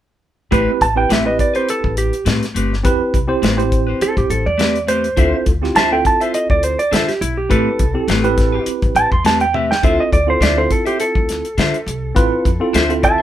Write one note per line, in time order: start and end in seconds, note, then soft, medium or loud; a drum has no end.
0.51 0.65 A1 medium
0.51 0.70 A3 medium
0.51 0.85 C4 medium
0.51 0.70 C4 medium
0.51 0.85 E4 medium
0.51 0.85 G4 medium
0.51 0.71 G4 medium
0.51 0.85 B4 medium
0.51 0.71 B4 medium
0.51 kick loud
0.51 closed hi-hat medium
0.81 1.06 A1 medium
0.81 0.97 A5 medium
0.81 kick medium
0.81 closed hi-hat medium
0.95 1.17 C4 medium
0.95 1.18 E4 medium
0.95 1.18 G4 medium
0.95 1.18 B4 medium
0.95 1.10 G5 medium
1.09 1.35 A1 medium
1.09 1.28 A3 medium
1.09 1.28 C4 medium
1.09 1.29 G4 medium
1.09 1.29 B4 medium
1.09 1.26 E5 medium
1.09 snare medium
1.09 closed hi-hat medium
1.24 2.13 C4 medium
1.24 2.13 E4 medium
1.24 2.13 G4 medium
1.24 2.14 B4 medium
1.24 1.39 D#5 medium
1.39 1.55 D5 medium
1.39 kick medium
1.39 closed hi-hat medium
1.54 1.72 C4 soft
1.54 1.71 G4 soft
1.54 1.71 B4 medium
1.54 1.68 C5 medium
1.54 closed hi-hat soft
1.69 1.97 A4 medium
1.69 closed hi-hat medium
1.84 2.09 A1 medium
1.84 kick medium
1.97 2.26 G4 medium
1.97 closed hi-hat medium
2.13 closed hi-hat soft
2.25 2.40 A2 medium
2.25 2.44 A3 medium
2.25 2.45 C4 medium
2.25 2.45 G4 medium
2.25 2.45 B4 medium
2.25 snare loud
2.25 closed hi-hat medium
2.43 snare soft
2.43 closed hi-hat soft
2.54 2.80 G1 medium
2.54 2.73 A3 medium
2.54 2.74 C4 medium
2.54 2.75 G4 medium
2.54 2.75 B4 medium
2.54 closed hi-hat medium
2.73 snare soft
2.83 2.98 E2 medium
2.83 3.17 C4 medium
2.83 3.17 E4 medium
2.83 3.18 G4 medium
2.83 3.18 B4 medium
2.83 kick loud
2.83 closed hi-hat medium
3.14 3.27 C2 medium
3.14 kick medium
3.14 closed hi-hat medium
3.27 3.50 C4 medium
3.27 3.50 E4 medium
3.27 3.50 G4 medium
3.27 3.50 C5 medium
3.42 3.93 A1 medium
3.42 3.61 A3 medium
3.42 3.61 C4 medium
3.42 3.62 G4 medium
3.42 3.62 B4 loud
3.42 snare loud
3.42 closed hi-hat medium
3.57 4.45 C4 medium
3.57 4.46 E4 medium
3.57 4.46 G4 medium
3.57 4.46 C5 medium
3.57 closed hi-hat soft
3.72 kick medium
3.72 closed hi-hat medium
3.87 4.05 C4 soft
3.87 4.04 G4 soft
3.87 4.04 B4 soft
4.01 4.17 A4 medium
4.01 muted upright bass stroke soft
4.01 closed hi-hat medium
4.17 4.28 A1 medium
4.17 4.30 G4 medium
4.17 kick medium
4.17 closed hi-hat soft
4.30 4.43 A1 medium
4.30 4.46 A4 medium
4.30 closed hi-hat medium
4.46 5.08 E2 medium
4.46 4.87 D5 medium
4.58 4.77 A3 medium
4.58 4.77 C4 medium
4.58 4.78 G4 medium
4.58 4.78 B4 medium
4.58 snare loud
4.58 closed hi-hat medium
4.76 closed hi-hat soft
4.87 5.06 A3 medium
4.87 5.07 C4 medium
4.87 5.07 G4 medium
4.87 5.08 B4 medium
4.87 5.45 C5 medium
4.87 closed hi-hat medium
5.04 closed hi-hat soft
5.17 5.31 D2 medium
5.17 5.50 C4 medium
5.17 5.36 D4 medium
5.17 5.51 E4 medium
5.17 5.36 F4 medium
5.17 5.51 F4 medium
5.17 5.51 A4 medium
5.17 5.36 C5 medium
5.17 5.37 E5 medium
5.17 kick loud
5.17 closed hi-hat medium
5.46 5.72 D2 medium
5.46 kick medium
5.46 closed hi-hat medium
5.62 5.83 C4 medium
5.62 5.84 E4 medium
5.62 5.84 F4 medium
5.62 5.84 G4 medium
5.62 snare soft
5.75 6.01 D2 medium
5.75 5.94 D4 medium
5.75 5.94 F4 medium
5.75 5.95 C5 medium
5.75 5.95 E5 medium
5.75 5.91 A5 medium
5.75 snare loud
5.75 closed hi-hat medium
5.91 6.79 C4 medium
5.91 6.79 E4 medium
5.91 6.79 F4 medium
5.91 6.80 A4 medium
5.91 6.05 G5 medium
6.05 6.21 A5 loud
6.05 kick medium
6.05 closed hi-hat medium
6.20 6.38 F4 soft
6.20 6.38 C5 soft
6.20 6.37 E5 medium
6.20 6.34 E5 medium
6.20 closed hi-hat soft
6.34 6.50 D#5 medium
6.34 closed hi-hat medium
6.50 6.75 D2 medium
6.50 6.63 D5 medium
6.50 kick medium
6.63 6.79 C5 medium
6.63 closed hi-hat medium
6.79 6.92 D5 medium
6.79 closed hi-hat soft
6.91 7.06 D3 medium
6.91 7.10 D4 medium
6.91 7.11 F4 medium
6.91 7.08 A4 medium
6.91 7.11 C5 medium
6.91 7.11 E5 medium
6.91 snare loud
6.91 closed hi-hat medium
7.08 7.21 G4 medium
7.08 snare soft
7.08 closed hi-hat soft
7.21 7.46 B1 medium
7.21 7.37 E4 loud
7.21 closed hi-hat medium
7.37 7.50 G4 medium
7.49 7.64 A1 loud
7.49 7.69 A3 medium
7.49 7.83 C4 medium
7.49 7.69 C4 medium
7.49 7.83 E4 medium
7.49 7.83 G4 medium
7.49 7.69 G4 medium
7.49 8.64 A4 medium
7.49 7.84 B4 medium
7.49 7.70 B4 medium
7.49 kick medium
7.49 closed hi-hat medium
7.79 7.93 C2 medium
7.79 kick medium
7.79 closed hi-hat medium
7.94 8.16 C4 medium
7.94 8.16 E4 medium
7.94 8.16 G4 medium
7.94 8.16 A4 medium
8.08 8.58 A1 medium
8.08 8.27 A3 medium
8.08 8.27 C4 medium
8.08 8.28 G4 medium
8.08 8.28 B4 medium
8.08 snare loud
8.08 closed hi-hat medium
8.23 9.11 C4 medium
8.23 9.12 E4 medium
8.23 9.12 G4 medium
8.23 9.12 B4 medium
8.23 closed hi-hat soft
8.38 kick medium
8.38 snare soft
8.38 closed hi-hat medium
8.52 8.71 C4 soft
8.52 8.70 G4 soft
8.52 8.70 B4 medium
8.66 muted upright bass stroke soft
8.66 closed hi-hat medium
8.82 8.94 A1 medium
8.82 kick medium
8.82 closed hi-hat soft
8.95 9.09 A1 medium
8.95 9.11 A5 medium
8.95 closed hi-hat medium
9.12 9.73 E2 medium
9.12 9.25 C6 medium
9.12 kick medium
9.24 9.43 A3 medium
9.24 9.44 C4 medium
9.24 9.44 G4 medium
9.24 9.44 B4 medium
9.24 9.41 A5 medium
9.24 snare loud
9.24 closed hi-hat medium
9.40 9.54 G5 medium
9.40 closed hi-hat soft
9.53 9.72 A3 soft
9.53 9.73 C4 medium
9.53 9.73 G4 medium
9.53 9.74 B4 medium
9.53 9.70 E5 medium
9.53 high tom medium
9.71 9.83 G5 medium
9.71 snare medium
9.83 9.97 D2 medium
9.83 10.16 C4 medium
9.83 10.01 D4 medium
9.83 10.16 E4 medium
9.83 10.02 F4 medium
9.83 10.17 F4 medium
9.83 10.17 A4 medium
9.83 10.02 C5 medium
9.83 10.02 E5 medium
9.83 9.99 E5 medium
9.83 kick loud
9.83 closed hi-hat medium
10.00 10.13 D#5 medium
10.12 10.37 D2 medium
10.12 10.28 D5 medium
10.12 kick medium
10.12 closed hi-hat medium
10.27 10.49 C4 medium
10.27 10.49 E4 medium
10.27 10.49 F4 medium
10.27 10.49 A4 medium
10.27 10.42 C5 medium
10.41 10.66 D2 medium
10.41 10.60 D4 medium
10.41 10.60 F4 medium
10.41 10.60 C5 medium
10.41 10.57 D5 medium
10.41 10.61 E5 medium
10.41 snare loud
10.41 closed hi-hat medium
10.56 11.44 C4 medium
10.56 11.45 E4 medium
10.56 11.45 F4 medium
10.56 11.45 A4 medium
10.56 10.71 C5 medium
10.71 10.86 A4 medium
10.71 kick medium
10.71 closed hi-hat medium
10.86 11.04 F4 soft
10.86 11.00 G4 medium
10.86 11.03 C5 soft
10.86 11.02 E5 medium
10.86 closed hi-hat soft
11.00 12.71 A4 medium
11.00 closed hi-hat medium
11.15 11.40 D2 medium
11.15 kick medium
11.29 snare soft
11.29 closed hi-hat medium
11.45 closed hi-hat soft
11.58 11.71 D3 medium
11.58 11.76 D4 medium
11.58 11.77 F4 medium
11.58 11.77 C5 medium
11.58 11.77 E5 medium
11.58 snare loud
11.58 closed hi-hat medium
11.74 closed hi-hat soft
11.86 12.12 C2 medium
11.86 closed hi-hat medium
12.15 12.30 A1 medium
12.15 12.49 C4 medium
12.15 12.49 E4 medium
12.15 12.49 F4 medium
12.15 12.49 B4 medium
12.15 kick loud
12.15 closed hi-hat medium
12.45 12.59 F2 medium
12.45 kick medium
12.45 closed hi-hat medium
12.60 12.82 C4 medium
12.60 12.82 E4 medium
12.60 12.82 F4 medium
12.60 12.82 A4 medium
12.73 13.22 D2 medium
12.73 12.92 D4 medium
12.73 12.93 F4 medium
12.73 12.93 C5 medium
12.73 12.93 E5 medium
12.73 snare loud
12.73 closed hi-hat medium
12.89 13.22 C4 medium
12.89 13.22 E4 medium
12.89 13.22 F4 medium
12.89 13.22 A4 medium
12.89 closed hi-hat soft
13.03 13.22 E5 medium
13.03 13.22 A5 loud
13.03 kick medium
13.03 closed hi-hat medium
13.18 13.22 E5 medium